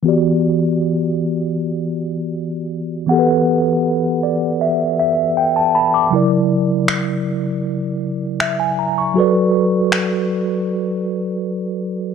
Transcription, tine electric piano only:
\new Staff \with { instrumentName = "Tine electric piano" } { \time 4/4 \key e \minor \tempo 4 = 79 << { r1 | r4. d''8 e''8 e''8 g''16 a''16 <a'' b''>16 d'''16~ | d'''16 r2 r8. e''16 gis''16 ais''16 cis'''16~ | cis'''16 r2. r8. | } \\ { <e b fis' g' d''>1 | <e b g' a' b' fis''>2.~ <e b g' a' b' fis''>8 r8 | <cis fis e' ais' d''>1 | <fis fis' a' b' d''>1 | } >> }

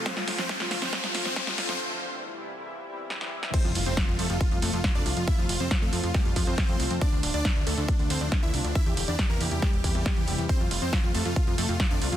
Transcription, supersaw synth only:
\new Staff \with { instrumentName = "Supersaw synth" } { \time 4/4 \key f \major \tempo 4 = 138 <c' c''>16 f'16 f'16 <c' c''>16 <c' c''>16 f'16 f'16 <c' c''>16 <c' c''>16 f'16 f'16 <c' c''>16 <c' c''>16 f'16 f'16 <c' c''>16 | r1 | <c' c''>16 f'16 f'16 <c' c''>16 f'16 f'16 <a a'>16 f'16 f'16 f'16 <a a'>16 f'16 r16 <d' d''>16 f'16 f'16 | <e' e''>16 f'16 f'16 <c' c''>16 f'16 <a a'>16 f'16 f'16 <g g'>16 f'16 f'16 <c' c''>4 r16 |
<d' d''>16 d'16 d'16 <d' d''>16 d'16 d'16 <a a'>16 d'16 d'16 d'16 <c' c''>16 d'16 d'16 <e' e''>16 d'16 d'16 | <e' e''>16 g'16 g'16 <d' d''>16 g'16 <bes bes'>16 g'16 g'16 <g g'>16 g'16 g'16 <g g'>4 r16 | <c' c''>16 f'16 f'16 <c' c''>16 f'16 f'16 <a a'>16 f'16 f'16 f'16 <a a'>16 f'16 f'16 <d' d''>16 f'16 f'16 | }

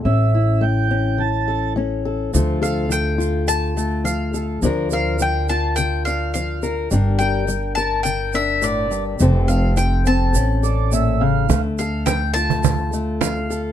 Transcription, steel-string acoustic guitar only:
\new Staff \with { instrumentName = "Steel-string acoustic guitar" } { \time 4/4 \key d \minor \tempo 4 = 105 << { cis'8 e'4 cis'4 a'8 cis'8 a'8 | <f a f' a'>8 a'4 f'4 a4 a'8 | <f d' f' bes'>8 bes'4 f'4 d'4 bes'8 | <g d' bes'>8 bes'4 bes'4 d'4. |
<f a c' a'>8 a'4 c'8 cis'8 a'4. | a8 a'4 f'4 a4 a'8 | } \\ { a,4 a4 e4 a4 | d4 f4 a,4 f4 | d4 f4 d4 f4 | g,4 g4 d4 a,8 g,8 |
f,4 f4 a,4 bes,8 cis8 | d4 f4 a,4 f4 | } >> }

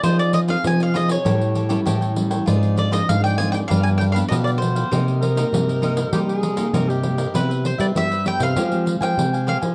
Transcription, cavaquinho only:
\new Staff \with { instrumentName = "Cavaquinho" } { \time 4/4 \key c \minor \tempo 4 = 98 <f' aes' c'' ees''>8 <f' aes' c'' ees''>16 <f' aes' c'' ees''>16 r16 <aes' c'' ees''>16 <f' aes' c'' ees''>16 <aes' c'' ees''>16 <g' a' cis'' g''>8 <g' a' cis'' g''>16 <g' a' cis'' g''>16 <g' a' cis'' g''>16 <a' cis'' g''>8 <a' cis'' g''>16 | <f' aes' c'' d''>8 <f' aes' c'' d''>16 <f' aes' c'' d''>16 r16 <aes' c'' d''>16 <f' aes' c'' d''>16 <aes' c'' d''>16 <d' g' b' f''>8 <d' g' b' f''>16 <d' g' b' f''>16 <d' g' b' f''>16 <g' b' f''>8 <g' b' f''>16 | <ees' bes' c'' ees''>8 <ees' bes' c'' ees''>16 <ees' bes' c'' ees''>16 r16 <bes' c'' ees''>16 <ees' bes' c'' ees''>16 <bes' c'' ees''>16 <ees' bes' c'' ees''>8 <ees' bes' c'' ees''>16 <ees' bes' c'' ees''>16 <ees' bes' c'' ees''>16 <bes' c'' ees''>8 <bes' c'' ees''>16 | \key c \major <e' b' c'' e''>16 <b' c'' e''>16 r16 <b' c'' e''>8 <b' c'' e''>16 <e' b' c'' e''>16 <b' c'' e''>16 <g' c'' f'' aes''>8 r16 <c'' f'' aes''>8 <c'' f'' aes''>16 <g' c'' f'' aes''>16 <c'' f'' aes''>16 | }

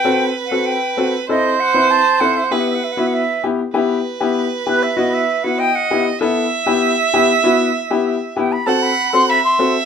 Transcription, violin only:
\new Staff \with { instrumentName = "Violin" } { \time 2/4 \key e \minor \tempo 4 = 97 b'2 | c''2 | b'4. r8 | b'2~ |
b'4 dis''4 | e''2~ | e''4. r8 | fis''4 e''4 | }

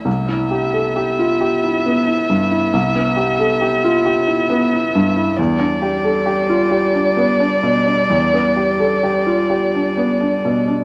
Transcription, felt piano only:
\new Staff \with { instrumentName = "Felt piano" } { \time 3/4 \key c \major \tempo 4 = 67 c,16 e'16 g'16 a'16 g'16 f'16 g'16 e'16 b16 e'16 g,16 e'16 | c,16 b16 g'16 a'16 g'16 f'16 g'16 e'16 b16 e'16 g,16 e'16 | e,16 d'16 g'16 a'16 g'16 f'16 g'16 d'16 b16 d'16 b,16 d'16 | e,16 b16 g'16 a'16 g'16 f'16 g'16 d'16 b16 d'16 b,16 d'16 | }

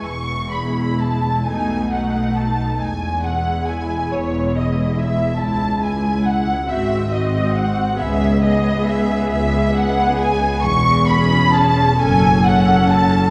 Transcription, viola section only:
\new Staff \with { instrumentName = "Viola section" } { \time 6/8 \key e \major \tempo 4. = 45 r8 <gis e'>4 <a dis'>8 <a dis'>4 | r8 <gis e'>4. <gis e'>4 | <gis e'>8 <gis e'>4 <bis fis'>8 <bis fis'>4 | <b gis'>8 <b gis'>4. <b gis'>4 |
\key cis \minor r8 <cis' gis'>4 <cis' a'>8 <cis' a'>4 | }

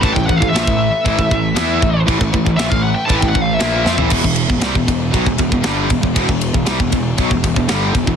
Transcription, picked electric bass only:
\new Staff \with { instrumentName = "Picked electric bass" } { \clef bass \time 4/4 \key e \minor \tempo 4 = 118 a,,16 a,,16 a,,16 a,,16 ais,,16 a,,8 r16 a,,16 a,,16 a,,8 e,8 a,,8 | a,,16 a,,16 a,,16 a,,16 ais,,16 a,,8 r16 a,,16 a,,16 a,,8 ais,,8 f,16 a,,16 | e,,16 e,,8 e,,16 c,16 e,,16 e,,8 b,,16 e,,16 e,,16 e,,16 g,,8 e,,16 e,,16 | e,,16 e,,8 e,,16 c,16 e,,16 e,,8 b,,16 e,,16 e,,16 e,,16 g,,8 e,,16 e,,16 | }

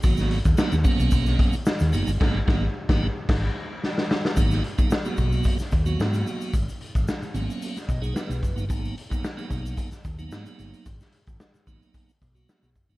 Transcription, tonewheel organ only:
<<
  \new Staff \with { instrumentName = "Tonewheel organ" } { \time 4/4 \key gis \minor \tempo 4 = 111 r1 | r1 | r1 | r2 r8 dis''16 gis'16 b'4 |
r1 | r1 | }
  \new Staff \with { instrumentName = "Tonewheel organ" } { \time 4/4 \key gis \minor <fis ais b fis'>8. r16 <fis ais b dis'>16 r16 <fis ais b cis'>4~ <fis ais b cis'>16 r8. <fis ais b dis'>16 r16 | <fis ais b>8 <fis ais b>8 r16 <fis ais b dis'>8 r2 r16 | <fis ais b dis'>8 r16 <fis ais b dis'>16 r16 <fis ais b fis'>4 r8 <fis ais b fis'>4~ <fis ais b fis'>16 | r4. <fis ais b cis'>8. r8 <fis ais b dis'>8. r16 <fis ais b dis'>16 |
<fis ais b dis'>8 r16 <fis ais b dis'>16 r16 <fis ais b dis'>4 r8 <fis ais b dis'>4~ <fis ais b dis'>16 | r4. <fis ais b dis'>8. r8 <fis ais b fis'>8. r16 <fis ais b dis'>16 | }
>>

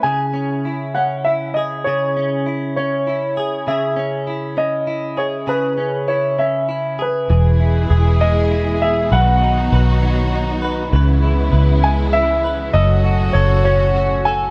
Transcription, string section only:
\new Staff \with { instrumentName = "String section" } { \clef bass \time 6/8 \key cis \minor \tempo 4. = 66 << { r2. | r2. | r2. | r2. |
<e gis e' gis'>2. | <dis fis dis' fis'>2. | <e gis b e'>2. | <cis fis cis' fis'>2. | } \\ { r2. | r2. | r2. | r2. |
b,2.~ | b,2. | cis2. | a,2. | } >> }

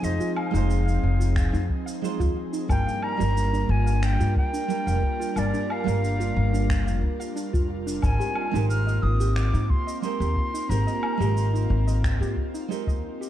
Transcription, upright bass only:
\new Staff \with { instrumentName = "Upright bass" } { \clef bass \time 4/4 \key g \phrygian \tempo 4 = 90 f,,16 r8 f,,8. f,,8. f,16 r8. ees,16 r8 | g,,16 r8 g,,8. g,,8. g,16 r8. f,,16 r8 | g,,16 r8 g,,8. g,,8. f,,16 r8. f,,8. | aes,,16 r8 aes,,8. aes,,8. aes,16 r8. ees,16 r8 |
aes,,16 r8 aes,,8. aes,,8. aes,16 r8. ees,16 r8 | }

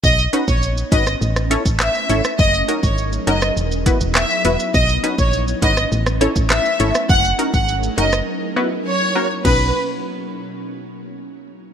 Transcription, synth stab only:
\new Staff \with { instrumentName = "Synth stab" } { \time 4/4 \key b \major \tempo 4 = 102 r8 <cis' dis' fis' b'>8 r8 <cis' dis' fis' b'>8 r8 <cis' e' a' cis''>8 r8 <cis' e' a' cis''>8 | r8 <cis' dis' fis' ais'>8 r8 <cis' dis' fis' ais'>8 r8 <b e' fis' b'>8 r8 <b e' fis' b'>8 | r8 <cis' dis' fis' b'>8 r8 <cis' dis' fis' b'>8 r8 <cis' e' a' cis''>8 r8 <cis' e' a' cis''>8 | r8 <cis' dis' fis' ais'>8 r8 <cis' dis' fis' ais'>8 r8 <b e' fis' b'>8 r8 <ais cis' fis' ais'>8 |
<cis' dis' fis' b'>8 r2. r8 | }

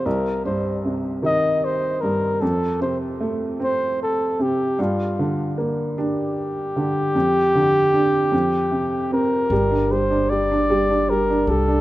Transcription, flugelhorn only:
\new Staff \with { instrumentName = "Flugelhorn" } { \time 6/8 \key g \minor \tempo 4. = 51 bes'8 c''8 r8 ees''8 c''8 bes'8 | a'8 c''8 r8 c''8 a'8 g'8 | f'4 r8 g'4.~ | g'2~ g'8 bes'8~ |
bes'8 c''8 d''4 bes'8 a'8 | }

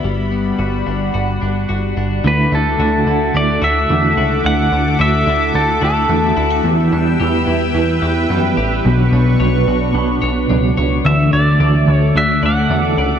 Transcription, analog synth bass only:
\new Staff \with { instrumentName = "Analog synth bass" } { \clef bass \time 4/4 \key g \lydian \tempo 4 = 109 g,,4 g,,8 g,,8 g,,8 g,,8 g,,8 g,,8 | \key d \major d,8 d,8 d,8 d,8 d,8 d,8 e,8 cis,8 | d,8 d,8 d,8 d,8 d,8 d,8 e,8 d,8 | e,8 e,8 e,8 e,8 e,8 e,8 fis,8 a,,8 |
b,,8 b,,8 b,,8 b,,8 b,,8 b,,8 cis,8 cis,8 | d,8 d,8 d,8 d,8 d,8 d,8 e,8 cis,8 | }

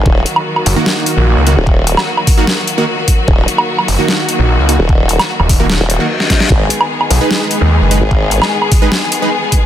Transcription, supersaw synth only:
\new Staff \with { instrumentName = "Supersaw synth" } { \time 4/4 \key dis \phrygian \tempo 4 = 149 r4. r16 <dis ais fis'>4.~ <dis ais fis'>16 <dis ais fis'>16 r16 | r4. r16 <dis ais fis'>16 r8. <dis ais fis'>16 r4 | r4. r16 <dis ais fis'>4.~ <dis ais fis'>16 <dis ais fis'>16 r16 | r4. r16 <dis ais fis'>16 r8. <dis ais fis'>16 r4 |
r4. r16 <gis dis' b'>4.~ <gis dis' b'>16 <gis dis' b'>16 r16 | r4. r16 <gis dis' b'>16 r8. <gis dis' b'>16 r4 | }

